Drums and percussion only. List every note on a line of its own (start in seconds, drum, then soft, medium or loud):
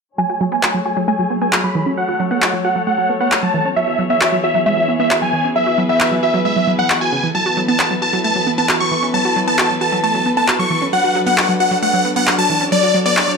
0.63 clap loud
1.53 clap loud
2.42 clap loud
3.32 clap loud
4.21 clap loud
5.11 clap loud
6.00 clap loud
6.90 clap loud
7.79 clap loud
8.69 clap loud
9.59 clap loud
10.48 clap loud
11.38 clap loud
12.27 clap loud
13.17 clap loud